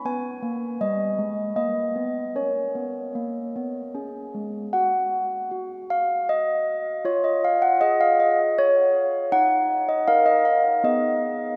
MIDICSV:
0, 0, Header, 1, 2, 480
1, 0, Start_track
1, 0, Tempo, 764331
1, 24, Time_signature, 3, 2, 24, 8
1, 984, Tempo, 791557
1, 3384, Tempo, 762389
1, 7186, End_track
2, 0, Start_track
2, 0, Title_t, "Handbells"
2, 0, Program_c, 0, 14
2, 32, Note_on_c, 0, 59, 49
2, 35, Note_on_c, 0, 80, 85
2, 36, Note_on_c, 0, 71, 38
2, 219, Note_off_c, 0, 59, 0
2, 267, Note_on_c, 0, 58, 49
2, 457, Note_off_c, 0, 58, 0
2, 489, Note_off_c, 0, 80, 0
2, 508, Note_on_c, 0, 55, 53
2, 509, Note_on_c, 0, 75, 82
2, 698, Note_off_c, 0, 55, 0
2, 745, Note_on_c, 0, 56, 48
2, 937, Note_off_c, 0, 56, 0
2, 968, Note_off_c, 0, 75, 0
2, 981, Note_on_c, 0, 75, 74
2, 982, Note_on_c, 0, 58, 54
2, 1172, Note_off_c, 0, 58, 0
2, 1220, Note_on_c, 0, 59, 49
2, 1413, Note_off_c, 0, 59, 0
2, 1441, Note_off_c, 0, 75, 0
2, 1444, Note_off_c, 0, 71, 0
2, 1461, Note_on_c, 0, 70, 31
2, 1463, Note_on_c, 0, 61, 43
2, 1465, Note_on_c, 0, 73, 58
2, 1656, Note_off_c, 0, 61, 0
2, 1703, Note_on_c, 0, 59, 45
2, 1897, Note_off_c, 0, 59, 0
2, 1945, Note_on_c, 0, 58, 48
2, 2139, Note_off_c, 0, 58, 0
2, 2192, Note_on_c, 0, 59, 50
2, 2384, Note_off_c, 0, 59, 0
2, 2405, Note_off_c, 0, 70, 0
2, 2427, Note_on_c, 0, 61, 49
2, 2429, Note_on_c, 0, 68, 33
2, 2622, Note_off_c, 0, 61, 0
2, 2649, Note_off_c, 0, 73, 0
2, 2670, Note_on_c, 0, 56, 38
2, 2863, Note_off_c, 0, 56, 0
2, 2887, Note_off_c, 0, 68, 0
2, 2902, Note_on_c, 0, 78, 87
2, 2907, Note_on_c, 0, 66, 51
2, 3369, Note_off_c, 0, 66, 0
2, 3377, Note_on_c, 0, 66, 47
2, 3598, Note_off_c, 0, 78, 0
2, 3623, Note_on_c, 0, 77, 90
2, 3857, Note_off_c, 0, 77, 0
2, 3867, Note_on_c, 0, 75, 94
2, 4328, Note_off_c, 0, 75, 0
2, 4342, Note_on_c, 0, 65, 66
2, 4344, Note_off_c, 0, 66, 0
2, 4346, Note_on_c, 0, 73, 83
2, 4465, Note_on_c, 0, 75, 79
2, 4467, Note_off_c, 0, 73, 0
2, 4587, Note_off_c, 0, 75, 0
2, 4593, Note_on_c, 0, 77, 84
2, 4703, Note_on_c, 0, 78, 92
2, 4711, Note_off_c, 0, 77, 0
2, 4822, Note_on_c, 0, 75, 105
2, 4825, Note_on_c, 0, 68, 56
2, 4827, Note_off_c, 0, 78, 0
2, 4946, Note_on_c, 0, 77, 110
2, 4947, Note_off_c, 0, 75, 0
2, 5068, Note_off_c, 0, 77, 0
2, 5068, Note_on_c, 0, 75, 95
2, 5298, Note_off_c, 0, 75, 0
2, 5310, Note_on_c, 0, 73, 110
2, 5752, Note_off_c, 0, 65, 0
2, 5762, Note_off_c, 0, 73, 0
2, 5775, Note_on_c, 0, 63, 66
2, 5775, Note_on_c, 0, 78, 115
2, 5777, Note_off_c, 0, 68, 0
2, 6117, Note_off_c, 0, 78, 0
2, 6130, Note_on_c, 0, 75, 88
2, 6243, Note_off_c, 0, 63, 0
2, 6249, Note_on_c, 0, 77, 113
2, 6250, Note_off_c, 0, 75, 0
2, 6250, Note_on_c, 0, 63, 54
2, 6253, Note_on_c, 0, 70, 57
2, 6363, Note_on_c, 0, 75, 94
2, 6370, Note_off_c, 0, 77, 0
2, 6487, Note_off_c, 0, 75, 0
2, 6487, Note_on_c, 0, 77, 98
2, 6707, Note_off_c, 0, 63, 0
2, 6708, Note_off_c, 0, 70, 0
2, 6721, Note_off_c, 0, 77, 0
2, 6728, Note_on_c, 0, 59, 67
2, 6729, Note_on_c, 0, 63, 48
2, 6730, Note_on_c, 0, 68, 45
2, 6734, Note_on_c, 0, 75, 88
2, 7186, Note_off_c, 0, 59, 0
2, 7186, Note_off_c, 0, 63, 0
2, 7186, Note_off_c, 0, 68, 0
2, 7186, Note_off_c, 0, 75, 0
2, 7186, End_track
0, 0, End_of_file